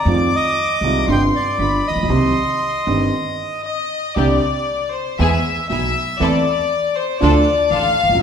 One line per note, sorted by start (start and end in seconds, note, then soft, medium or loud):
0.00 0.36 D5 medium
0.05 0.28 F2 medium
0.05 0.29 D#3 medium
0.05 0.29 F3 medium
0.05 0.29 G#3 medium
0.05 0.29 C4 medium
0.05 0.29 F4 medium
0.05 1.08 D6 medium
0.36 1.06 D#5 medium
0.81 1.03 C2 medium
0.81 1.05 C2 medium
0.81 1.05 C3 medium
0.81 1.05 D#3 medium
0.81 1.05 G#3 medium
0.81 1.05 C4 medium
0.81 1.05 F4 medium
1.08 1.29 G1 medium
1.08 1.30 G1 medium
1.08 1.30 G2 medium
1.08 1.30 D3 medium
1.08 1.30 G3 medium
1.08 1.30 C4 medium
1.08 1.30 F4 medium
1.08 1.59 C6 medium
1.12 1.23 G5 medium
1.36 1.87 D5 medium
1.58 1.80 G1 soft
1.58 1.81 G1 soft
1.58 1.81 G2 soft
1.58 1.81 D3 soft
1.58 1.81 G3 soft
1.58 1.81 B3 soft
1.58 1.81 F4 soft
1.58 2.07 B5 medium
1.87 1.95 A1 soft
1.87 1.97 A1 soft
1.87 3.62 D#5 medium
1.96 2.02 A#1 medium
1.96 2.04 A#1 soft
2.03 2.10 B1 medium
2.03 2.08 B1 medium
2.09 2.31 C2 medium
2.09 2.31 C3 medium
2.09 2.31 D#3 medium
2.09 2.32 G3 medium
2.09 2.32 C4 medium
2.09 2.32 G4 medium
2.09 3.13 C6 medium
2.87 3.08 G1 medium
2.87 3.09 G1 medium
2.87 3.09 G2 medium
2.87 3.08 D#3 medium
2.87 3.09 G3 medium
2.87 3.09 C4 medium
2.87 3.09 G4 medium
3.64 4.12 D#5 medium
4.15 4.38 C2 medium
4.15 4.38 C3 medium
4.15 4.38 D3 medium
4.15 4.38 G3 medium
4.15 4.38 C4 medium
4.15 4.38 D4 medium
4.15 4.38 G4 medium
4.15 4.93 D5 medium
4.92 5.18 C5 medium
5.18 5.40 E2 medium
5.18 5.41 E2 medium
5.18 5.41 E3 medium
5.18 5.40 G#3 medium
5.18 5.40 B3 medium
5.18 5.41 E4 medium
5.18 5.40 G#4 medium
5.18 5.41 G#4 medium
5.18 5.68 E5 medium
5.69 5.91 B1 soft
5.69 5.91 B1 medium
5.69 5.91 B2 soft
5.69 5.92 B3 soft
5.69 5.92 E4 soft
5.69 5.92 G#4 soft
5.69 6.17 E5 medium
6.20 6.41 E2 medium
6.20 6.42 E2 medium
6.20 6.41 E3 medium
6.20 6.41 A3 medium
6.20 6.42 C4 medium
6.20 6.42 E4 medium
6.20 6.42 A4 medium
6.20 6.96 D5 medium
6.96 7.21 C5 medium
7.20 7.42 D2 medium
7.20 7.43 D2 medium
7.20 7.42 D3 medium
7.20 7.42 F3 medium
7.20 7.42 A3 medium
7.20 7.42 D4 medium
7.20 7.43 D4 medium
7.20 7.43 F4 medium
7.20 7.43 A4 medium
7.20 7.71 D5 medium
7.71 7.92 A1 medium
7.71 7.93 A1 medium
7.71 7.92 A2 medium
7.71 7.93 D4 soft
7.71 7.93 F4 soft
7.71 7.94 A4 medium
7.71 8.22 F5 loud
8.03 8.09 E1 soft
8.03 8.09 E2 soft
8.09 8.14 F1 medium
8.09 8.16 F2 medium
8.15 8.20 F#1 medium
8.15 8.22 F#2 medium